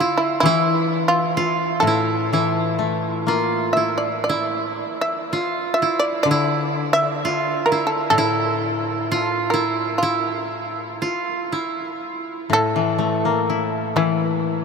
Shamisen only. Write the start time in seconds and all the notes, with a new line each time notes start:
Already playing: F4
0.18 E4
0.40 E4
1.08 F4
1.80 A4
3.73 E5
3.98 D5
4.24 D5
5.01 E5
5.74 E5
5.99 D5
6.23 D5
6.70 A#4
6.93 E5
7.66 A#4
7.87 A4
8.10 A4
9.02 F4
9.50 A#4
9.98 F4
10.46 A4
12.53 A4
13.49 F4
13.97 E4